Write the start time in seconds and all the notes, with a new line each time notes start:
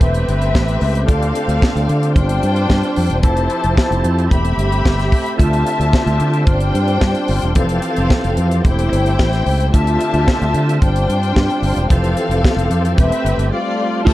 Already playing: C4 G4
0.00 E1 A3 C4 B4 E5, kick, closed hi-hat
0.14 closed hi-hat
0.28 G1, closed hi-hat
0.42 closed hi-hat
0.55 A1, kick, snare
0.68 closed hi-hat
0.81 C#2, open hi-hat
0.95 closed hi-hat
1.06 D2 D3 C4 D4 F4 A4 F5, kick, closed hi-hat
1.22 closed hi-hat
1.35 closed hi-hat
1.48 D2, closed hi-hat
1.62 kick, snare
1.75 D2, closed hi-hat
1.89 D3, closed hi-hat
2.03 closed hi-hat
2.15 G1 G3 D4 C5 G5, kick, closed hi-hat
2.29 closed hi-hat
2.43 G2, closed hi-hat
2.56 closed hi-hat
2.70 G2, kick, snare
2.83 closed hi-hat
2.96 F2, open hi-hat
3.10 E1, closed hi-hat
3.23 F1 F3 E4 G4 A4 C5 A5, kick, closed hi-hat
3.37 closed hi-hat
3.50 closed hi-hat
3.64 F1, closed hi-hat
3.77 kick, snare
3.91 F1, closed hi-hat
4.04 F2, closed hi-hat
4.19 closed hi-hat
4.30 E1 A3 G4 E5 B5, kick, closed hi-hat
4.45 closed hi-hat
4.57 G1, closed hi-hat
4.72 closed hi-hat
4.85 G1, kick, snare
4.99 snare, closed hi-hat
5.12 kick, open hi-hat
5.26 closed hi-hat
5.38 D2 D3 F4 G4 E5 A5, kick, closed hi-hat
5.53 closed hi-hat
5.67 closed hi-hat
5.80 D2, closed hi-hat
5.93 kick, snare
6.06 D2, closed hi-hat
6.20 D3, closed hi-hat
6.34 closed hi-hat
6.46 G1 G3 D4 F4 C5 G5, kick, closed hi-hat
6.60 closed hi-hat
6.74 G2, closed hi-hat
6.88 closed hi-hat
7.01 G2, kick, snare
7.15 closed hi-hat
7.28 G1, open hi-hat
7.42 E1, closed hi-hat
7.55 F1 E3 F3 C4 G4 A4 F5, kick, closed hi-hat
7.69 closed hi-hat
7.82 closed hi-hat
7.96 F1, closed hi-hat
8.10 kick, snare
8.24 F1, closed hi-hat
8.37 F2, closed hi-hat
8.51 closed hi-hat
8.64 E1 A3 E4 C5 G5, kick, closed hi-hat
8.79 closed hi-hat
8.92 G1, closed hi-hat
9.06 closed hi-hat
9.19 A1, kick, snare
9.33 snare, closed hi-hat
9.46 C#2, open hi-hat
9.60 closed hi-hat
9.73 D2 D3 C4 F4 E5 A5, kick, closed hi-hat
9.87 closed hi-hat
10.01 closed hi-hat
10.14 D2, closed hi-hat
10.28 kick, snare
10.41 D2, closed hi-hat
10.54 D3, closed hi-hat
10.69 closed hi-hat
10.81 G1 G3 D4 C5 G5, kick, closed hi-hat
10.96 closed hi-hat
11.09 G2, closed hi-hat
11.23 closed hi-hat
11.36 G2, kick, snare
11.50 closed hi-hat
11.62 G1, open hi-hat
11.77 E1, closed hi-hat
11.89 F1 E3 F3 C4 G4 A4 F5, kick, closed hi-hat
12.04 closed hi-hat
12.17 closed hi-hat
12.29 F1, closed hi-hat
12.44 kick, snare
12.56 F1, closed hi-hat
12.70 F2, closed hi-hat
12.85 closed hi-hat
12.97 E1 A3 C4 B4 E5, kick, closed hi-hat
13.12 closed hi-hat
13.25 G1, closed hi-hat
13.38 G1, closed hi-hat
13.51 G3 A3 F4 D5
14.04 D2 D3 A3 C4 E4 F4 G4 A4 C5 E5 A5, kick, crash